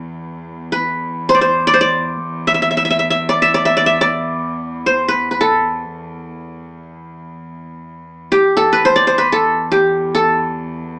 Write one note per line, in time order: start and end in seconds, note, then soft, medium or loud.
0.00 8.53 E2 medium
0.72 1.35 B4 medium
1.29 1.41 C5 medium
1.35 1.67 D5 medium
1.41 1.73 C5 medium
1.67 1.80 D5 medium
1.74 2.79 C5 medium
1.81 2.79 D5 medium
2.47 2.54 E5 medium
2.54 2.62 E5 medium
2.62 2.70 E5 medium
2.71 2.77 E5 medium
2.77 2.85 E5 medium
2.85 2.90 E5 medium
2.90 2.99 E5 medium
2.99 3.10 E5 medium
3.10 3.42 E5 medium
3.29 3.54 D5 medium
3.42 3.65 E5 medium
3.54 3.76 D5 medium
3.65 3.86 E5 medium
3.77 4.01 D5 medium
3.86 4.78 E5 medium
4.01 5.00 D5 medium
4.86 5.14 C5 medium
5.08 5.31 B4 medium
5.31 6.40 B4 soft
5.41 7.73 A4 medium
8.32 9.57 G4 medium
8.54 10.99 E2 medium
8.54 9.32 A4 medium
8.73 8.91 B4 medium
8.85 9.07 C5 medium
8.96 9.94 D5 medium
9.07 9.24 C5 medium
9.18 10.27 B4 medium
9.32 10.14 A4 medium
9.72 10.97 G4 medium
10.15 10.99 A4 medium